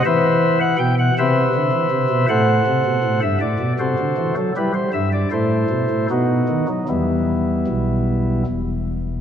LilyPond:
<<
  \new Staff \with { instrumentName = "Pipe organ" } { \time 3/4 \key e \minor \tempo 4 = 79 <b' c'' e''>8. fis''16 g''16 fis''16 <b' c'' e''>4. | <a' c'' fis''>4~ <a' c'' fis''>16 e''16 d''8 <fis' a' c''>8. a'16 | <e' g' b'>16 c''16 e''16 d''16 <e' a' c''>4 <b dis' fis'>8. dis'16 | <g b e'>2 r4 | }
  \new Staff \with { instrumentName = "Pipe organ" } { \clef bass \time 3/4 \key e \minor e4 b,8 c8 d16 e16 c16 b,16 | a,8 c16 b,16 a,16 g,16 a,16 b,16 c16 d16 e16 fis16 | g8 g,8 a,8 b,16 a,16 b,8 dis16 fis16 | <e, e>4 <b,, b,>4 <e,, e,>4 | }
>>